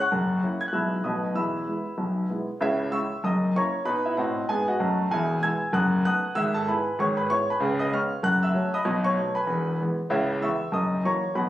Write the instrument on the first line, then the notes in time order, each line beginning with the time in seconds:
grand piano
0.00 F#5 C#6 F#6
0.12 F#1 F#2
0.42 A#3 C#4 E4
0.61 G#6
0.68 F#6
0.72 B1 B2 G#3 B3 E4 E5 B5 E6
1.04 B1 B2 A3 B3 F#4 D#5 B5 D#6
1.34 E2 E3 E5 B5 E6
1.67 G#3 B3 E4
1.98 B1 B2
2.29 G#3 B3 E4
2.61 C#2 C#3 E4 C#5 E5
2.91 G#3 C#4 E4 E5 C#6 E6
3.24 F#1 F#2 D#5 D#6
3.56 A#3 C#4 E4 C#5 A#5 C#6
3.85 B2 D#4 B4 B5
4.05 E4 E5
4.17 A2 C4 F#4 D#5 F#5
4.48 G#2 B3 G#4 G#5
4.68 F#4 D#5 F#5
4.80 F#2 A3
5.11 E1 E2 G#4 E5 G#5
5.42 G#3 B3 E4 G#5 E6 G#6
5.73 F#1 F#2 F#5 D#6 F#6
6.04 A3 B3 D#4 F#5 D#6 F#6
6.35 G#1 G#2 E5 E6
6.54 A4 A5
6.67 G#3 B3 E4 B4 G#5 B5
6.99 G#1 G#2 C#5 C#6
7.17 B4 B5
7.30 G#3 B3 E4 C#5 C#6
7.50 B4 G#5 B5
7.60 C#2 C#3
7.79 D#5 D#6
7.92 G#3 B3 C#4 F5 C#6 F6
8.23 F#1 F#2 F#5 F#6
8.43 E5 E6
8.54 F#3 A3 C#4
8.74 D#5 B5 D#6
8.85 B1 B2
9.04 C#5 C#6
9.17 F#3 A3 B3
9.35 B4 G#5 B5
9.47 E1 E2
9.80 E3 G#3 B3
10.10 C#2 C#3 E4 C#5 E5
10.41 E3 G#3 B3 E5 C#6 E6
10.72 F#1 F#2 D#5 D#6
11.04 E3 F#3 A#3 C#5 A#5 C#6
11.35 B1 B2 B4 F#5 B5